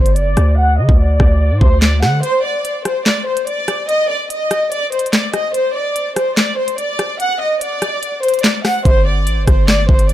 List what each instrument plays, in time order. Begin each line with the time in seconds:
Already playing: 808-style bass G1, violin section C5
0.06 closed hi-hat
0.16 808-style bass F#1, violin section D5, closed hi-hat
0.27 808-style bass G1
0.37 808-style bass D2, cross-stick, closed hi-hat
0.58 violin section F#5
0.78 808-style bass D3, violin section D#5
0.89 808-style bass D2, kick
0.99 violin section D5
1.20 808-style bass D2, kick, cross-stick
1.51 808-style bass A2
1.61 808-style bass D2, violin section C5, kick
1.82 violin section D5, snare, clap
2.03 808-style bass D3, violin section F#5, cross-stick, snare
2.23 violin section C5, closed hi-hat
2.44 violin section D5
2.65 closed hi-hat
2.85 violin section C5, cross-stick, closed hi-hat
3.06 violin section D5, snare, clap
3.27 violin section C5
3.37 closed hi-hat
3.47 violin section D5, closed hi-hat
3.68 cross-stick, closed hi-hat
3.89 violin section D#5, closed hi-hat
4.09 violin section D5
4.30 violin section D#5, closed hi-hat
4.51 cross-stick, closed hi-hat
4.72 violin section D5, closed hi-hat
4.92 violin section C5, closed hi-hat
4.99 closed hi-hat
5.06 closed hi-hat
5.13 violin section D5, snare, clap
5.33 violin section D#5, cross-stick, closed hi-hat
5.54 violin section C5, closed hi-hat
5.75 violin section D5
5.96 closed hi-hat
6.16 violin section C5, cross-stick, closed hi-hat
6.37 violin section D5, snare, clap
6.58 violin section C5
6.68 closed hi-hat
6.78 violin section D5, closed hi-hat
6.99 cross-stick, closed hi-hat
7.20 violin section F#5, closed hi-hat
7.40 violin section D#5
7.61 violin section D5, closed hi-hat
7.82 cross-stick, closed hi-hat
8.03 closed hi-hat
8.23 violin section C5, closed hi-hat
8.28 closed hi-hat
8.34 closed hi-hat
8.39 closed hi-hat
8.44 violin section D5, snare, clap
8.65 violin section F#5, cross-stick, snare, open hi-hat
8.85 808-style bass G1, violin section C5, kick, closed hi-hat
9.06 violin section D5
9.27 808-style bass A1, closed hi-hat
9.37 808-style bass G1
9.47 808-style bass G1, violin section C5, kick, cross-stick, closed hi-hat
9.68 violin section D5, snare, clap
9.89 808-style bass G1, violin section C5, kick
9.99 closed hi-hat
10.09 violin section D5, closed hi-hat